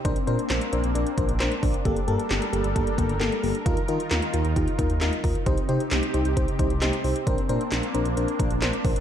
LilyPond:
<<
  \new Staff \with { instrumentName = "FM electric piano" } { \time 4/4 \key bes \major \tempo 4 = 133 <d' bes' c''>8 <d' bes' c''>8 <d' bes' c''>8 <d' bes' c''>8 <d' bes' d''>8 <d' bes' c''>8 <d' bes' c''>8 <d' bes' c''>8 | <bes g' a'>8 <bes g' a'>8 <bes g' a'>8 <bes g' a'>8 <bes g' a'>8 <bes g' a'>8 <bes g' a'>8 <bes g' a'>8 | <ees' f' bes'>8 <ees' f' bes'>8 <ees' f' bes'>8 <ees' f' bes'>8 <ees' f' g'>8 <ees' f' bes'>8 <ees' f' bes'>8 <ees' f' bes'>8 | <ees' g' c''>8 <ees' g' c''>8 <ees' g' c''>8 <ees' g' c''>8 <ees' g' c''>8 <ees' g' c''>8 <ees' g' c''>8 <ees' g' c''>8 |
<d' bes' c''>8 <d' bes' c''>8 <d' bes' c''>8 <d' bes' c''>8 <d' bes' c''>8 <d' bes' c''>8 <d' bes' c''>8 <d' bes' c''>8 | }
  \new Staff \with { instrumentName = "Analog synth pad" } { \time 4/4 \key bes \major << { <bes c'>1 | <g a'>1 | <ees ees' f'>1 | <c c'>1 |
bes1 | } \\ { d'1 | bes'1~ | bes'1 | g'1 |
d'1 | } >> }
  \new Staff \with { instrumentName = "Analog synth bass" } { \clef bass \time 4/4 \key bes \major bes,,16 r16 bes,16 r16 bes,,16 r16 bes,,16 bes,,16 bes,,16 r16 bes,,16 bes,,16 bes,,16 r16 bes,,16 r16 | g,,16 r16 g,16 r16 g,,16 r16 g,,16 g,,16 g,,16 r16 g,,16 g,,16 g,,16 r16 g,,16 r16 | ees,16 r16 ees16 r16 ees,16 r16 ees,16 ees,16 ees,16 r16 ees,16 ees,16 ees,16 r16 ees,16 r16 | c,16 r16 c16 r16 c,16 r16 c,16 c,16 c,16 r16 c,16 c,16 c,16 r16 c,16 r16 |
bes,,16 r16 bes,16 r16 bes,,16 r16 bes,,16 bes,,16 bes,,16 r16 bes,,16 bes,,16 bes,,16 r16 bes,,16 r16 | }
  \new DrumStaff \with { instrumentName = "Drums" } \drummode { \time 4/4 <hh bd>16 hh16 hh16 hh16 <hc hh sn>16 hh16 hh16 hh16 hh16 hh16 <hh bd>16 hh16 <hc hh sn>16 hh16 <hho bd>16 hh16 | <hh bd>16 hh16 hh16 hh16 <hc hh sn>16 hh16 hh16 hh16 <hh bd>16 hh16 <hh bd>16 hh16 <hc hh sn>16 hh16 hho16 hh16 | <hh bd>16 hh16 hh16 hh16 <hc hh sn>16 hh16 hh16 hh16 <hh bd>16 hh16 <hh bd>16 hh16 <hc hh sn>16 hh16 <hho bd>16 hh16 | <hh bd>16 hh16 hh16 hh16 <hc hh sn>16 hh16 hh16 hh16 <hh bd>16 hh16 <hh bd>16 hh16 <hc hh sn>16 hh16 hho16 hh16 |
<hh bd>16 hh16 hh16 hh16 <hc hh sn>16 hh16 hh16 hh16 hh16 hh16 <hh bd>16 hh16 <hc hh sn>16 hh16 <hho bd>16 hh16 | }
>>